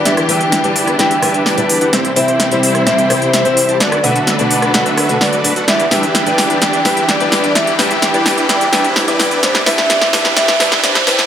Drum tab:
HH |xxoxxxoxxxoxoxox|xxoxxxoxxxoxxxox|xxoxxxoxxxoxoxox|xxoxxxoxxxoxxxox|
SD |or--o--ro-r-o---|o---o--ro-r-o---|or--o--ro-r-o---|o-o-o-o-o-o-o-o-|

HH |xxoxxxoxxxoxoxox|xxoxxxoxxxoxxxox|
SD |o-o-o-o-o-o-o-o-|oooooooooooooooo|